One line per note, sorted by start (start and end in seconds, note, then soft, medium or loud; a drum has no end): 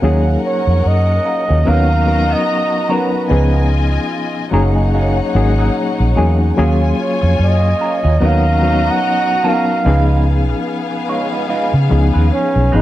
0.01 0.35 D#2 loud
0.01 1.10 F#3 medium
0.01 0.40 F#3 medium
0.01 1.11 A#3 medium
0.01 1.62 C#4 medium
0.01 0.40 C#4 medium
0.01 1.11 C#4 medium
0.01 1.11 D#4 medium
0.01 0.40 F4 medium
0.01 0.41 G#4 medium
0.01 1.11 G#4 medium
0.01 1.62 A#4 medium
0.01 1.62 F#5 medium
0.46 0.89 C#5 medium
0.67 0.81 F2 medium
0.67 muted clean electric guitar stroke soft
0.84 1.18 F#2 medium
0.84 1.70 D#5 medium
0.84 muted clean electric guitar stroke soft
1.07 muted clean electric guitar stroke soft
1.24 1.42 F#3 medium
1.24 1.43 C#4 medium
1.24 1.43 F4 soft
1.24 1.43 A#4 medium
1.48 1.64 D#2 medium
1.48 1.62 F#3 soft
1.48 1.62 C#4 medium
1.48 1.62 F4 medium
1.48 1.61 G#4 medium
1.64 2.00 F#3 medium
1.64 1.88 B3 medium
1.64 2.00 B3 medium
1.64 1.89 C#4 medium
1.64 2.00 C#4 medium
1.64 2.00 D#4 medium
1.64 3.26 F#4 medium
1.64 1.89 F#4 medium
1.64 1.89 A#4 medium
1.64 2.01 A#4 medium
1.64 3.26 D#5 medium
1.64 3.26 A#5 medium
1.68 2.34 D#2 medium
1.68 2.35 F5 loud
2.06 2.61 F#3 medium
2.06 2.61 B3 medium
2.06 2.62 C#4 medium
2.06 2.62 D#4 medium
2.06 2.62 A#4 medium
2.06 muted clean electric guitar stroke soft
2.29 2.44 B3 soft
2.29 2.44 C#4 soft
2.29 2.43 F#4 medium
2.29 2.43 A#4 medium
2.29 2.93 D#5 loud
2.70 muted clean electric guitar stroke soft
2.88 3.17 F#3 medium
2.88 3.12 B3 medium
2.88 3.18 B3 medium
2.88 3.12 C#4 medium
2.88 3.18 C#4 medium
2.88 3.18 D#4 medium
2.88 3.12 F#4 medium
2.88 3.11 A#4 medium
2.88 3.19 A#4 medium
2.88 3.72 B4 medium
3.12 muted clean electric guitar stroke soft
3.28 3.97 C#2 medium
3.28 3.67 F3 medium
3.28 4.38 F3 medium
3.28 3.67 B3 medium
3.28 4.38 B3 medium
3.28 4.39 C#4 medium
3.28 3.68 D#4 medium
3.28 4.39 D#4 medium
3.28 4.50 F4 medium
3.28 3.68 G#4 medium
3.28 4.39 G#4 medium
3.28 4.50 D#5 medium
3.28 4.50 G#5 medium
3.93 muted clean electric guitar stroke soft
4.11 muted clean electric guitar stroke soft
4.35 muted clean electric guitar stroke soft
4.51 5.20 F#1 medium
4.51 5.20 F#3 medium
4.51 4.70 F#3 medium
4.51 5.21 A#3 medium
4.51 4.71 A#3 medium
4.51 5.21 C#4 medium
4.51 6.53 D#4 medium
4.51 5.21 D#4 medium
4.51 4.71 D#4 medium
4.51 5.21 G#4 medium
4.51 4.71 A#4 medium
4.51 6.53 C#5 medium
4.51 6.53 F#5 medium
4.75 4.90 F#3 soft
4.75 4.89 A#3 soft
4.75 4.89 D#4 medium
4.75 4.89 G#4 medium
4.94 5.17 F#3 medium
4.94 5.17 A#3 medium
4.94 5.17 D#4 medium
4.94 5.17 G#4 medium
5.34 5.68 G#1 medium
5.34 5.89 F#3 medium
5.34 5.90 A#3 medium
5.34 5.90 C#4 medium
5.34 5.90 D#4 medium
5.34 5.90 G#4 medium
5.34 muted clean electric guitar stroke soft
5.58 5.72 F#3 soft
5.58 5.72 A#3 soft
5.58 5.72 D#4 soft
5.58 5.72 G#4 soft
5.77 muted clean electric guitar stroke soft
5.99 6.14 A#1 medium
5.99 muted clean electric guitar stroke soft
6.16 6.51 E2 medium
6.16 6.39 F#3 medium
6.16 6.45 F#3 medium
6.16 6.39 A#3 medium
6.16 6.45 A#3 medium
6.16 6.46 C#4 medium
6.16 6.40 D#4 medium
6.16 6.46 D#4 medium
6.16 6.39 G#4 medium
6.16 6.46 G#4 medium
6.41 muted clean electric guitar stroke soft
6.56 6.92 D#2 loud
6.56 7.66 F#3 medium
6.56 6.96 F#3 medium
6.56 7.66 A#3 medium
6.56 6.96 C#4 medium
6.56 7.66 C#4 medium
6.56 8.18 F4 medium
6.56 6.96 F4 medium
6.56 7.67 F4 medium
6.56 7.67 G#4 medium
6.56 6.97 G#4 medium
6.56 8.18 C#5 medium
6.56 8.17 G#5 medium
7.01 7.38 C#5 medium
7.21 7.37 F2 medium
7.21 muted clean electric guitar stroke soft
7.38 7.73 F#2 medium
7.38 muted clean electric guitar stroke soft
7.43 8.28 D#5 medium
7.62 muted clean electric guitar stroke soft
7.80 7.98 F#3 medium
7.80 7.99 C#4 medium
7.80 7.99 F4 medium
7.80 7.99 A#4 medium
8.04 8.19 D#2 medium
8.04 8.18 F#3 soft
8.04 8.18 C#4 medium
8.04 8.18 F4 medium
8.04 8.17 G#4 medium
8.20 8.89 D#2 loud
8.20 8.55 F#3 medium
8.20 8.44 B3 medium
8.20 8.56 B3 medium
8.20 8.44 C#4 medium
8.20 8.56 C#4 medium
8.20 8.56 D#4 medium
8.20 9.82 F#4 medium
8.20 8.45 F#4 medium
8.20 8.45 A#4 medium
8.20 8.56 A#4 medium
8.20 9.82 D#5 medium
8.20 9.82 A#5 medium
8.26 8.92 F5 loud
8.61 9.17 F#3 medium
8.61 9.18 B3 medium
8.61 9.18 C#4 medium
8.61 9.18 D#4 medium
8.61 9.18 C#5 medium
8.61 muted clean electric guitar stroke soft
8.85 9.00 B3 soft
8.85 9.00 C#4 soft
8.85 8.99 F#4 medium
8.85 8.99 A#4 medium
8.91 9.50 F#5 loud
9.02 muted clean electric guitar stroke soft
9.26 muted clean electric guitar stroke soft
9.43 9.73 F#3 medium
9.43 9.67 B3 medium
9.43 9.74 B3 medium
9.43 9.67 C#4 medium
9.43 9.74 C#4 medium
9.43 9.74 D#4 medium
9.43 9.67 F#4 medium
9.43 9.67 A#4 medium
9.43 9.74 A#4 medium
9.48 10.29 F5 medium
9.68 muted clean electric guitar stroke soft
9.84 10.53 C#2 medium
9.84 10.94 F3 medium
9.84 10.23 G#3 medium
9.84 12.82 B3 medium
9.84 10.94 B3 medium
9.84 10.95 C#4 medium
9.84 10.24 D#4 medium
9.84 10.95 D#4 medium
9.84 10.24 F4 medium
9.84 12.82 G#4 medium
9.84 10.95 G#4 medium
9.84 10.24 B4 medium
9.84 12.82 F5 medium
10.49 muted clean electric guitar stroke soft
10.68 muted clean electric guitar stroke soft
10.91 muted clean electric guitar stroke soft
11.08 11.26 G#3 medium
11.08 11.27 D#4 medium
11.08 11.27 F4 medium
11.08 11.27 C#5 medium
11.32 11.46 G#3 soft
11.32 11.46 D#4 soft
11.32 11.45 F4 soft
11.32 11.45 B4 medium
11.49 11.72 G#3 medium
11.49 11.73 D#4 medium
11.49 11.73 F4 medium
11.49 11.73 B4 medium
11.74 11.88 C#3 medium
11.89 12.10 C#2 medium
11.89 12.45 F3 medium
11.89 12.45 B3 medium
11.89 12.45 C#4 medium
11.89 12.46 D#4 medium
11.89 12.46 G#4 medium
11.89 muted clean electric guitar stroke soft
12.14 12.29 D#2 medium
12.14 12.28 G#3 soft
12.14 12.28 D#4 soft
12.14 12.27 F4 soft
12.14 12.27 B4 medium
12.31 12.78 C#4 medium
12.31 muted clean electric guitar stroke soft
12.55 12.70 B1 medium
12.55 muted clean electric guitar stroke soft
12.72 12.82 G#1 medium
12.72 12.82 F3 medium
12.72 12.82 G#3 medium
12.72 12.82 B3 medium
12.72 12.82 C#4 medium
12.72 12.82 D#4 medium
12.72 12.82 F4 medium
12.72 12.82 G#4 medium
12.72 12.82 B4 medium
12.76 12.82 D#4 loud